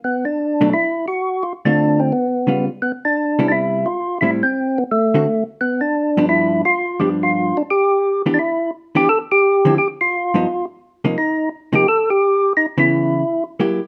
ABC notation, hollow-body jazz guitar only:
X:1
M:4/4
L:1/8
Q:"Swing" 1/4=173
K:Gmix
V:1 name="Hollow-body jazz guitar"
z3 [B,,^F,A,D] z4 | z [D,A,CF]3 z2 [^C,G,B,^E] z | z3 [C,G,B,E]3 z2 | [A,,G,CE] z4 [D,A,C^F] z2 |
z3 [G,,F,B,D]3 z2 | [G,,F,B,D]3 z4 [E,B,DG] | z3 [E,B,DG] z3 [D,F,CE] | z3 [G,,F,B,^D] z3 [C,F,_B,_E] |
z3 [C,F,_B,_E] z4 | z [^C,E,B,]3 z2 [^F,^A,EG] z |]